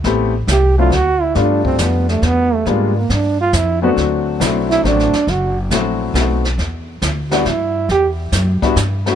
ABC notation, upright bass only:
X:1
M:3/4
L:1/8
Q:"Swing" 1/4=138
K:Dmix
V:1 name="Upright bass" clef=bass
A,,,2 C,,2 D,,2 | G,,2 =F,,2 E,,2 | ^G,,2 =G,,2 ^E,,2 | D,,2 B,,,2 A,,, z |
F,,,2 _B,,,2 =B,,,2 | E,,2 D,,2 G,,2 | E,,2 F,, z G,,2 |]